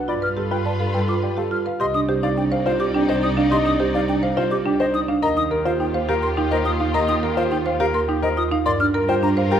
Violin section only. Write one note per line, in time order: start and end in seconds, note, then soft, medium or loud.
0.08 1.62 F4 medium
0.08 1.62 B4 medium
1.80 5.05 D#4 medium
1.80 5.05 D5 medium
5.23 8.48 F4 medium
5.23 8.47 G4 medium
8.66 9.60 F4 medium
8.66 9.60 A#4 medium